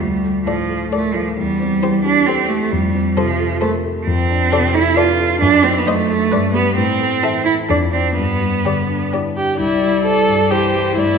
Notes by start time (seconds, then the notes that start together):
0.00 D2 G3
0.24 A3
0.46 A2 F3 A4 D5
0.69 A4
0.92 A3 A4 A#4 D5
1.14 F3 A4
1.37 E2 G3
1.60 C4
1.82 E3 G4 C5
2.05 D4 G4
2.26 C4 G4 A4 C5
2.48 A3 G4
2.71 F2 G3
2.95 C4
3.17 C3 F3 A4 C5
3.40 A4
3.61 A3 A4 A#4 C5
3.85 A4
4.07 F2 C4
4.30 D4
4.52 C3 A4 D5
4.75 E4 A4
4.96 F4 A4 B4 D5
5.20 A4
5.41 F#2 D4
5.64 C4 D#4
5.78 B3
5.86 F#3 A3 C5 D#5
6.10 A4
6.32 G2 B4 D5
6.54 B3 G4 B4
6.76 A2 C4
7.00 A3
7.23 E3 A4 E5
7.45 E4
7.69 F2 D4 A4 D5
7.92 C4 D4 D5
8.16 G2 B3
8.41 G3
8.65 D3 G4 D5
8.89 D4
9.12 E4 G4 D5
9.36 D4 G4
9.59 C2 G3 E4 D5
9.82 G3
10.05 E4 A4 C5
10.28 G2
10.51 E3 E4 G4 C5
10.75 G3
10.96 G2 A3 E4 D5